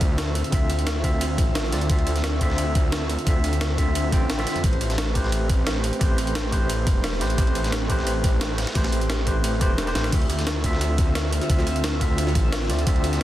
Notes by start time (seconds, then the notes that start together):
Already playing: D2 D3 C4 F4 E5
0.01 kick, closed hi-hat, ride
0.18 snare, closed hi-hat, ride
0.35 closed hi-hat, ride
0.44 closed hi-hat
0.50 D2 D3 C4 F4, kick, closed hi-hat, ride
0.54 E5
0.70 closed hi-hat, ride
0.79 closed hi-hat
0.87 snare, closed hi-hat, ride
1.03 D3 C4 F4 E5, kick, closed hi-hat, ride
1.21 closed hi-hat, ride
1.38 A1, kick, closed hi-hat, ride
1.55 snare, closed hi-hat, ride
1.64 snare
1.71 D2 D3 C4 F4 D5, snare, closed hi-hat, ride
1.81 closed hi-hat, ride
1.87 D2 D3 C4 F4, kick, closed hi-hat, ride
1.92 E5
1.99 ride
2.07 closed hi-hat, ride
2.16 snare, closed hi-hat
2.24 snare, closed hi-hat, ride
2.39 D3 C4 F4, kick, closed hi-hat, ride
2.43 E5
2.50 snare
2.58 closed hi-hat, ride
2.75 kick, closed hi-hat, ride
2.92 snare, closed hi-hat, ride
3.10 closed hi-hat, ride
3.19 closed hi-hat
3.25 D2 D3 C4 F4, kick, closed hi-hat, ride
3.29 E5
3.44 closed hi-hat, ride
3.53 closed hi-hat
3.61 snare, closed hi-hat, ride
3.77 D3 C4 F4 E5, kick, closed hi-hat, ride
3.95 closed hi-hat, ride
4.11 A1 D3 C4 F4 G5, kick, closed hi-hat, ride
4.30 snare, closed hi-hat, ride
4.38 D3 C4 F4 E5, snare, closed hi-hat
4.47 snare, closed hi-hat, ride
4.56 F2, closed hi-hat, ride
4.62 A1 A3 G4 B4, kick, closed hi-hat, ride
4.66 C5
4.73 ride
4.81 closed hi-hat, ride
4.90 snare, closed hi-hat
4.98 snare, closed hi-hat, ride
5.13 A3 G4 B4, kick, closed hi-hat, ride
5.17 C5
5.24 snare
5.32 closed hi-hat, ride
5.50 kick, closed hi-hat, ride
5.67 snare, closed hi-hat, ride
5.84 closed hi-hat, ride
5.93 closed hi-hat
5.99 A1 A3 G4 B4, kick, closed hi-hat, ride
6.03 C5
6.18 closed hi-hat, ride
6.27 closed hi-hat
6.35 snare, closed hi-hat, ride
6.51 A3 G4 B4 C5, kick, closed hi-hat, ride
6.69 closed hi-hat, ride
6.87 E1, kick, closed hi-hat, ride
7.04 snare, closed hi-hat, ride
7.13 snare
7.20 A1 A3 G4 B4 C5, snare, closed hi-hat, ride
7.30 closed hi-hat, ride
7.36 A1 A3 G4 B4, kick, closed hi-hat, ride
7.40 C5
7.47 ride
7.55 closed hi-hat, ride
7.64 snare, closed hi-hat
7.72 snare, closed hi-hat, ride
7.88 A3 G4 B4, kick, closed hi-hat, ride
7.92 C5
7.99 snare
8.07 closed hi-hat, ride
8.24 kick, closed hi-hat, ride
8.41 snare, closed hi-hat, ride
8.58 snare, closed hi-hat, ride
8.67 snare, closed hi-hat, ride
8.73 A1 A3 G4 B4, kick, snare, closed hi-hat, ride
8.77 C5
8.84 snare, ride
8.92 closed hi-hat, ride
9.01 closed hi-hat
9.10 snare, closed hi-hat, ride
9.26 A3 G4 B4 C5, kick, closed hi-hat, ride
9.44 closed hi-hat, ride
9.60 E1 A3 G4 B4 C5, kick, closed hi-hat, ride
9.78 snare, closed hi-hat, ride
9.86 A3 G4 B4 C5, snare, closed hi-hat
9.95 A1, snare, closed hi-hat, ride
10.04 snare, closed hi-hat
10.10 D2 D3 C4 F4 E5, kick, closed hi-hat, crash, ride
10.15 E5
10.22 ride
10.30 closed hi-hat, ride
10.39 snare, closed hi-hat
10.47 snare, closed hi-hat, ride
10.62 D3 C4 F4, kick, closed hi-hat, ride
10.66 E5
10.73 snare
10.81 snare, closed hi-hat, ride
10.98 kick, closed hi-hat, ride
11.15 snare, closed hi-hat, ride
11.32 closed hi-hat, ride
11.41 snare, closed hi-hat
11.48 D2 D3 C4 F4, kick, closed hi-hat, ride
11.52 E5
11.59 snare
11.67 closed hi-hat, ride
11.76 closed hi-hat
11.84 snare, closed hi-hat, ride
12.00 D3 C4 F4 E5, kick, closed hi-hat, ride
12.18 closed hi-hat, ride
12.27 snare
12.35 A1, kick, closed hi-hat, ride
12.52 snare, closed hi-hat, ride
12.61 snare
12.69 D2 D3 C4 F4 D5, snare, closed hi-hat, ride
12.79 closed hi-hat, ride
12.85 D2 D3 C4 F4, kick, closed hi-hat, ride
12.89 E5
12.96 ride
13.04 closed hi-hat, ride
13.13 snare, closed hi-hat